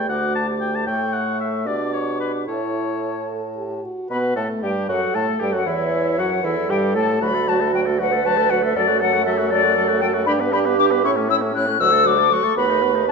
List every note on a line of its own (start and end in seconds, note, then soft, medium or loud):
0.00 0.11 E2 medium
0.00 0.11 G4 soft
0.09 0.88 D2 soft
0.09 0.86 A3 soft
0.09 0.47 F#4 soft
0.09 0.34 F#5 medium
0.09 0.89 D6 soft
0.36 0.47 A5 medium
0.48 0.89 G4 soft
0.61 0.77 G5 medium
0.75 0.86 A5 medium
0.87 1.68 A2 soft
0.87 1.68 A3 soft
0.87 1.66 A4 soft
0.87 1.15 G5 medium
0.87 1.68 C#6 soft
1.14 1.40 F#5 medium
1.41 1.69 E5 medium
1.66 2.47 B2 soft
1.66 2.49 D4 soft
1.66 2.49 G4 soft
1.66 1.95 D5 medium
1.66 2.47 D6 soft
1.94 2.20 C#5 medium
2.20 2.33 B4 soft
2.47 3.81 A2 soft
2.47 3.24 E4 soft
2.47 3.84 A4 soft
2.47 3.28 C#5 soft
2.47 3.81 A5 soft
3.29 3.42 A4 soft
3.57 3.85 G4 soft
3.84 4.10 F#4 soft
4.10 4.35 B2 medium
4.10 4.35 B3 medium
4.10 4.35 B4 medium
4.10 4.16 B5 medium
4.36 4.48 A2 soft
4.36 4.65 A3 medium
4.36 4.48 A4 medium
4.36 4.43 A5 medium
4.62 4.88 G2 medium
4.62 4.91 G3 medium
4.62 4.89 G4 medium
4.62 4.69 G5 medium
4.88 5.00 F#2 medium
4.88 5.16 F#3 medium
4.88 5.17 F#4 medium
4.88 5.68 A4 medium
4.88 5.16 F#5 medium
5.14 5.26 A2 medium
5.14 5.40 A3 medium
5.14 5.42 A4 medium
5.14 5.41 A5 medium
5.40 5.55 G2 medium
5.40 5.56 G3 medium
5.40 5.55 G4 medium
5.40 5.54 G5 medium
5.53 5.66 F#2 medium
5.53 5.66 F#3 medium
5.53 5.66 F#4 medium
5.53 5.69 F#5 medium
5.66 6.19 E2 medium
5.66 6.20 E3 medium
5.66 6.17 E4 medium
5.66 6.45 C#5 medium
5.66 6.21 E5 medium
6.18 6.45 F#2 medium
6.18 6.43 F#3 medium
6.18 6.30 F#4 medium
6.18 6.46 F#5 medium
6.43 6.71 E2 medium
6.43 6.55 E3 medium
6.43 6.72 E4 medium
6.43 7.21 A4 medium
6.43 6.70 E5 medium
6.69 6.97 G2 medium
6.69 6.97 G3 medium
6.69 6.95 G4 medium
6.69 6.76 G5 medium
6.95 7.21 A2 medium
6.95 7.21 A3 medium
6.95 7.21 A4 medium
6.95 7.24 A5 medium
7.21 8.72 D2 medium
7.21 7.36 F#3 medium
7.21 8.02 F#4 medium
7.21 7.36 F#4 medium
7.21 7.50 B5 loud
7.35 7.49 A3 medium
7.35 7.50 A4 medium
7.47 7.62 F#3 medium
7.47 7.63 F#4 medium
7.47 7.74 A5 medium
7.61 7.73 A3 medium
7.61 7.73 A4 medium
7.74 7.87 F#3 medium
7.74 7.88 F#4 medium
7.74 7.80 G5 medium
7.86 8.01 A3 medium
7.86 8.01 A4 medium
7.99 8.13 F#3 medium
7.99 8.14 F#4 medium
7.99 8.78 B4 medium
7.99 8.27 F#5 medium
8.12 8.24 A3 medium
8.12 8.25 A4 medium
8.25 8.39 F#3 medium
8.25 8.39 F#4 medium
8.25 8.51 A5 medium
8.37 8.52 A3 medium
8.37 8.52 A4 medium
8.50 8.65 F#3 medium
8.50 8.64 F#4 medium
8.50 8.63 F#5 medium
8.63 8.76 A3 medium
8.63 8.75 A4 soft
8.63 8.77 E5 medium
8.75 10.29 F#2 medium
8.75 8.91 F#3 medium
8.75 8.89 A4 medium
8.75 10.27 A4 medium
8.75 9.00 D5 loud
8.88 9.03 A3 medium
8.88 9.03 F#4 medium
9.01 9.16 F#3 medium
9.01 9.15 A4 medium
9.01 9.25 F#5 medium
9.13 9.26 A3 medium
9.13 9.25 F#4 medium
9.25 9.41 F#3 medium
9.25 9.40 A4 medium
9.25 9.50 E5 loud
9.38 9.53 A3 medium
9.38 9.53 F#4 medium
9.51 9.65 F#3 medium
9.51 9.65 A4 medium
9.51 10.00 D5 loud
9.64 9.76 A3 medium
9.64 9.76 F#4 medium
9.76 9.91 F#3 medium
9.76 9.90 A4 medium
9.89 10.04 A3 medium
9.89 10.03 F#4 medium
10.00 10.16 F#3 medium
10.00 10.16 A4 medium
10.00 10.06 G5 loud
10.14 10.26 A3 medium
10.14 10.27 F#4 medium
10.26 11.05 G2 medium
10.26 10.42 D4 medium
10.26 10.42 G4 medium
10.26 11.51 G4 medium
10.26 10.32 B5 loud
10.40 10.54 B3 medium
10.40 10.55 B4 medium
10.53 10.68 D4 medium
10.53 10.67 G4 medium
10.53 10.59 B5 loud
10.66 10.78 B3 medium
10.66 10.78 B4 medium
10.79 10.93 D4 medium
10.79 10.93 G4 medium
10.79 10.85 D6 loud
10.91 11.03 B3 medium
10.91 11.04 B4 medium
11.04 11.80 A2 medium
11.04 11.18 C#4 medium
11.04 11.18 E4 medium
11.04 11.11 C#6 medium
11.17 11.31 A3 medium
11.17 11.31 C#4 medium
11.29 11.43 C#4 medium
11.29 11.43 E4 medium
11.29 11.36 E6 loud
11.42 11.53 A3 medium
11.42 11.54 C#4 medium
11.54 11.68 C#4 medium
11.54 11.69 E4 medium
11.54 11.82 F#6 loud
11.67 11.79 A3 medium
11.67 11.80 C#4 medium
11.79 12.40 D2 medium
11.79 11.94 F#3 medium
11.79 11.94 F#4 medium
11.79 12.53 A4 medium
11.79 12.08 E6 loud
11.92 12.07 A3 medium
11.92 12.07 A4 medium
12.05 12.19 F#3 medium
12.05 12.20 F#4 medium
12.05 12.34 D6 medium
12.18 12.30 A3 medium
12.18 12.31 A4 medium
12.31 12.45 F#3 medium
12.31 12.46 F#4 medium
12.31 12.56 C#6 loud
12.43 12.55 A3 medium
12.43 12.57 A4 medium
12.56 13.12 D#2 medium
12.56 12.70 B3 medium
12.56 12.71 F#4 medium
12.56 13.12 B4 medium
12.56 13.07 B5 medium
12.68 12.83 A3 medium
12.68 12.84 D#4 medium
12.82 12.96 B3 medium
12.82 12.97 F#4 medium
12.94 13.06 A3 medium
12.94 13.08 D#4 medium
13.07 13.12 B3 medium
13.07 13.12 F#4 medium
13.07 13.12 A5 medium